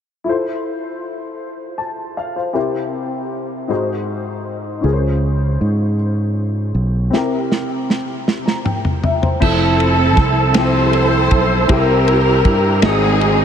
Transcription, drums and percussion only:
7.13 snare soft
7.52 snare soft
7.90 snare medium
8.28 snare medium
8.48 snare medium
8.66 mid tom medium
8.85 floor tom medium
9.04 floor tom medium
9.23 floor tom medium
9.42 kick loud
9.42 crash medium
9.80 ride bell soft
10.17 kick medium
10.17 snare soft
10.17 ride bell soft
10.54 snare loud
10.54 ride bell medium
10.93 ride bell soft
11.31 kick medium
11.31 ride bell soft
11.69 kick loud
11.69 ride bell medium
12.08 ride bell soft
12.45 kick medium
12.45 ride bell soft
12.82 snare loud
12.82 ride bell medium
13.21 ride bell soft

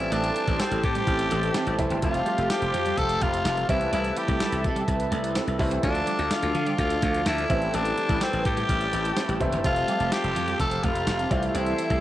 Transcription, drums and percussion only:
0.00 closed hi-hat medium
0.12 closed hi-hat medium
0.24 closed hi-hat medium
0.36 closed hi-hat medium
0.48 kick medium
0.48 closed hi-hat medium
0.60 snare loud
0.60 closed hi-hat loud
0.60 tambourine medium
0.72 closed hi-hat medium
0.83 kick loud
0.83 closed hi-hat medium
0.95 closed hi-hat medium
1.07 kick medium
1.07 closed hi-hat medium
1.19 closed hi-hat medium
1.31 closed hi-hat medium
1.43 closed hi-hat medium
1.54 snare loud
1.54 closed hi-hat medium
1.54 tambourine medium
1.67 closed hi-hat medium
1.78 kick medium
1.78 closed hi-hat medium
1.90 closed hi-hat medium
2.02 kick loud
2.02 closed hi-hat medium
2.14 closed hi-hat medium
2.26 closed hi-hat medium
2.38 closed hi-hat medium
2.50 snare loud
2.50 closed hi-hat medium
2.50 tambourine medium
2.62 closed hi-hat medium
2.74 closed hi-hat medium
2.86 closed hi-hat medium
2.98 kick medium
2.98 closed hi-hat medium
3.09 closed hi-hat medium
3.21 kick loud
3.21 closed hi-hat medium
3.34 closed hi-hat medium
3.45 snare loud
3.45 closed hi-hat medium
3.45 tambourine medium
3.57 closed hi-hat medium
3.69 kick loud
3.69 closed hi-hat medium
3.81 closed hi-hat medium
3.93 closed hi-hat medium
4.05 closed hi-hat medium
4.17 closed hi-hat medium
4.28 kick medium
4.28 closed hi-hat medium
4.40 snare loud
4.40 closed hi-hat medium
4.40 tambourine medium
4.52 closed hi-hat medium
4.64 kick loud
4.64 closed hi-hat medium
4.76 closed hi-hat medium
4.88 kick medium
4.88 closed hi-hat medium
5.00 closed hi-hat medium
5.12 closed hi-hat medium
5.24 closed hi-hat medium
5.35 snare loud
5.35 closed hi-hat medium
5.35 tambourine medium
5.48 closed hi-hat medium
5.59 kick medium
5.59 open hi-hat medium
5.71 closed hi-hat medium
5.83 kick loud
5.83 closed hi-hat medium
5.95 closed hi-hat medium
6.07 closed hi-hat medium
6.19 closed hi-hat medium
6.31 snare loud
6.31 closed hi-hat medium
6.31 tambourine medium
6.43 closed hi-hat medium
6.55 closed hi-hat medium
6.66 closed hi-hat soft
6.78 kick medium
6.78 closed hi-hat medium
6.90 closed hi-hat medium
7.02 kick loud
7.02 closed hi-hat medium
7.14 closed hi-hat medium
7.26 snare loud
7.26 closed hi-hat medium
7.26 tambourine medium
7.38 closed hi-hat soft
7.50 kick loud
7.50 closed hi-hat medium
7.62 closed hi-hat medium
7.74 closed hi-hat medium
7.85 closed hi-hat medium
7.98 closed hi-hat medium
8.09 kick medium
8.09 closed hi-hat medium
8.21 snare loud
8.21 closed hi-hat medium
8.21 tambourine medium
8.33 closed hi-hat medium
8.45 kick loud
8.45 closed hi-hat medium
8.57 closed hi-hat medium
8.69 kick loud
8.69 closed hi-hat medium
8.81 closed hi-hat medium
8.93 closed hi-hat medium
9.05 closed hi-hat medium
9.17 snare loud
9.17 closed hi-hat medium
9.17 tambourine medium
9.29 closed hi-hat medium
9.41 kick medium
9.41 closed hi-hat medium
9.52 closed hi-hat medium
9.64 kick loud
9.64 closed hi-hat medium
9.76 closed hi-hat medium
9.88 closed hi-hat medium
10.00 closed hi-hat medium
10.12 snare loud
10.12 closed hi-hat medium
10.12 tambourine medium
10.24 closed hi-hat medium
10.36 closed hi-hat medium
10.48 closed hi-hat medium
10.59 kick loud
10.59 closed hi-hat medium
10.71 closed hi-hat medium
10.83 kick loud
10.83 closed hi-hat medium
10.95 closed hi-hat medium
11.07 snare loud
11.07 closed hi-hat loud
11.07 tambourine medium
11.19 closed hi-hat soft
11.31 kick loud
11.31 closed hi-hat medium
11.43 closed hi-hat medium
11.55 closed hi-hat medium
11.66 closed hi-hat medium
11.79 closed hi-hat medium
11.90 kick medium
11.90 closed hi-hat medium

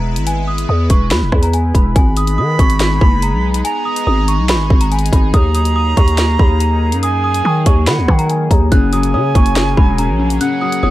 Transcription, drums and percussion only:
0.16 closed hi-hat medium
0.27 closed hi-hat medium
0.58 closed hi-hat medium
0.90 kick medium
0.90 closed hi-hat medium
1.11 snare loud
1.11 closed hi-hat medium
1.32 kick loud
1.32 cross-stick loud
1.43 closed hi-hat medium
1.53 closed hi-hat medium
1.75 kick medium
1.75 closed hi-hat medium
1.96 kick loud
1.96 closed hi-hat medium
2.17 closed hi-hat medium
2.27 closed hi-hat medium
2.59 kick loud
2.59 closed hi-hat medium
2.70 closed hi-hat medium
2.80 snare loud
2.80 closed hi-hat medium
3.01 kick loud
3.22 closed hi-hat medium
3.54 closed hi-hat medium
3.65 closed hi-hat medium
3.96 closed hi-hat medium
4.28 closed hi-hat medium
4.49 snare loud
4.49 closed hi-hat medium
4.70 kick loud
4.81 closed hi-hat medium
4.92 closed hi-hat soft
4.99 closed hi-hat medium
5.06 closed hi-hat medium
5.13 kick loud
5.13 closed hi-hat medium
5.34 kick loud
5.34 closed hi-hat medium
5.55 closed hi-hat medium
5.65 closed hi-hat medium
5.97 kick loud
5.97 closed hi-hat medium
6.08 closed hi-hat medium
6.18 snare loud
6.18 closed hi-hat medium
6.39 kick loud
6.60 closed hi-hat medium
6.92 closed hi-hat medium
7.03 closed hi-hat medium
7.34 closed hi-hat medium
7.66 kick loud
7.66 closed hi-hat medium
7.87 snare loud
7.87 closed hi-hat medium
8.08 kick loud
8.08 cross-stick loud
8.19 closed hi-hat medium
8.30 closed hi-hat medium
8.51 kick medium
8.51 closed hi-hat medium
8.72 kick loud
8.72 closed hi-hat medium
8.93 closed hi-hat loud
9.03 closed hi-hat medium
9.35 kick loud
9.35 closed hi-hat medium
9.46 closed hi-hat medium
9.56 snare loud
9.56 closed hi-hat medium
9.77 kick loud
9.98 closed hi-hat medium
10.30 closed hi-hat medium
10.41 closed hi-hat medium
10.72 closed hi-hat medium

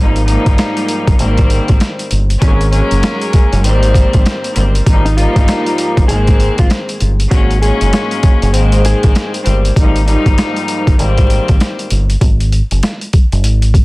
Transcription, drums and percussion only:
0.16 closed hi-hat medium
0.28 closed hi-hat medium
0.46 kick medium
0.46 closed hi-hat medium
0.58 snare loud
0.58 snare medium
0.58 closed hi-hat medium
0.77 closed hi-hat medium
0.88 closed hi-hat medium
1.07 kick medium
1.07 closed hi-hat medium
1.19 closed hi-hat medium
1.38 kick medium
1.38 closed hi-hat medium
1.50 closed hi-hat medium
1.68 kick medium
1.68 closed hi-hat soft
1.80 snare loud
1.80 snare medium
1.80 closed hi-hat medium
1.99 closed hi-hat medium
2.11 closed hi-hat medium
2.30 closed hi-hat medium
2.42 kick loud
2.42 closed hi-hat loud
2.61 closed hi-hat medium
2.73 closed hi-hat medium
2.91 closed hi-hat medium
3.03 snare loud
3.03 snare medium
3.03 closed hi-hat medium
3.22 closed hi-hat medium
3.33 kick medium
3.33 closed hi-hat medium
3.53 closed hi-hat medium
3.64 closed hi-hat medium
3.83 closed hi-hat medium
3.94 kick medium
3.94 closed hi-hat medium
4.13 kick medium
4.13 closed hi-hat medium
4.25 snare loud
4.25 snare medium
4.25 closed hi-hat medium
4.44 closed hi-hat medium
4.56 closed hi-hat medium
4.75 closed hi-hat medium
4.86 kick loud
4.86 closed hi-hat loud
5.06 closed hi-hat medium
5.18 closed hi-hat medium
5.36 kick medium
5.36 closed hi-hat medium
5.48 snare loud
5.48 snare medium
5.48 closed hi-hat medium
5.66 closed hi-hat medium
5.78 closed hi-hat medium
5.97 kick loud
5.97 closed hi-hat medium
6.09 closed hi-hat medium
6.27 kick medium
6.27 closed hi-hat medium
6.40 closed hi-hat medium
6.58 kick medium
6.58 closed hi-hat medium
6.70 snare loud
6.70 snare medium
6.70 closed hi-hat medium
6.89 closed hi-hat medium
7.00 closed hi-hat medium
7.20 closed hi-hat medium
7.31 kick loud
7.31 closed hi-hat loud
7.50 closed hi-hat soft
7.62 closed hi-hat medium
7.81 closed hi-hat medium
7.93 snare loud
7.93 snare medium
7.93 closed hi-hat medium
8.11 closed hi-hat medium
8.23 kick medium
8.23 closed hi-hat medium
8.42 closed hi-hat medium
8.54 closed hi-hat medium
8.72 closed hi-hat medium
8.85 closed hi-hat medium
9.03 kick medium
9.03 closed hi-hat medium
9.15 snare loud
9.15 snare medium
9.15 closed hi-hat medium
9.34 closed hi-hat medium
9.46 closed hi-hat medium
9.65 closed hi-hat medium
9.76 kick loud
9.76 closed hi-hat loud
9.96 closed hi-hat medium
10.08 closed hi-hat medium
10.26 kick medium
10.26 closed hi-hat medium
10.38 snare loud
10.38 closed hi-hat medium
10.56 closed hi-hat medium
10.68 closed hi-hat medium
10.87 kick loud
10.87 closed hi-hat medium
10.99 closed hi-hat medium
11.17 kick medium
11.17 closed hi-hat medium
11.30 closed hi-hat medium
11.48 kick medium
11.48 closed hi-hat medium
11.60 snare loud
11.60 snare medium
11.60 closed hi-hat medium
11.79 closed hi-hat medium
11.90 closed hi-hat medium
12.10 closed hi-hat medium
12.21 kick loud
12.21 closed hi-hat loud
12.40 closed hi-hat medium
12.52 closed hi-hat medium
12.71 closed hi-hat medium
12.83 snare loud
12.83 snare medium
12.83 closed hi-hat medium
13.01 closed hi-hat medium
13.13 kick medium
13.13 closed hi-hat medium
13.32 closed hi-hat medium
13.44 closed hi-hat loud
13.62 closed hi-hat medium
13.74 kick medium
13.74 closed hi-hat medium

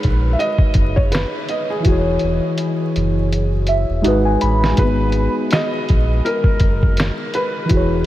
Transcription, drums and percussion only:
0.03 kick medium
0.03 closed hi-hat medium
0.40 closed hi-hat medium
0.59 kick loud
0.74 kick medium
0.74 closed hi-hat medium
0.97 kick loud
1.12 finger snap medium
1.12 snare loud
1.12 closed hi-hat medium
1.49 closed hi-hat medium
1.85 kick loud
1.85 closed hi-hat medium
2.19 closed hi-hat soft
2.58 closed hi-hat medium
2.96 closed hi-hat medium
3.32 closed hi-hat medium
3.67 closed hi-hat medium
4.04 closed hi-hat medium
4.41 closed hi-hat medium
4.64 snare medium
4.77 kick loud
4.77 closed hi-hat medium
5.12 closed hi-hat soft
5.51 finger snap medium
5.51 snare loud
5.51 closed hi-hat medium
5.89 kick loud
5.89 closed hi-hat soft
6.26 closed hi-hat medium
6.44 kick loud
6.60 kick medium
6.60 closed hi-hat medium
6.83 kick medium
6.97 finger snap medium
6.97 snare loud
6.97 closed hi-hat medium
7.34 closed hi-hat medium
7.69 kick loud
7.69 closed hi-hat medium

